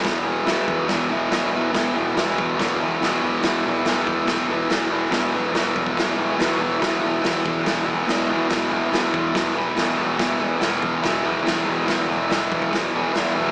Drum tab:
HH |o---o---o---o---|o---o---o---o---|o---o---o---o---|o---o---o---o---|
SD |o---o---o---o---|o---o---o---o---|o---o---o---o---|o---o---o---o---|
BD |o-----o-o-------|o-----o-o-------|o-----o-o-------|o-----ooo-------|

HH |o---o---o---o---|o---o---o---o---|o---o---o---o---|o---o---o---o---|
SD |o---o---o---o---|o---o---o---o---|o---o---o---o---|o---o---o---o---|
BD |o-----o-o-------|o-----o-o-------|o-----o-o-------|o-----ooo-------|